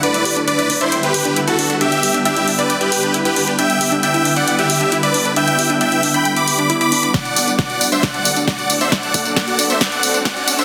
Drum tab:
HH |xxoxxxoxxxoxxxox|xxoxxxoxxxoxxxox|xxoxxxoxxxoxxxox|xxoxxxoxxxoxxxox|
TB |----------------|----------------|----------------|----------------|
SD |----------------|----------------|----------------|----------------|
BD |----------------|----------------|----------------|----------------|

HH |xxoxxxoxxxoxxxox|xxoxxxoxxxoxxxox|
TB |xxxxxxxxxxxxxxxx|xxxxxxxxxxxxxxxx|
SD |o---o---o---o---|o---o---o---o---|
BD |o---o---o---o---|o-o-o---o---o---|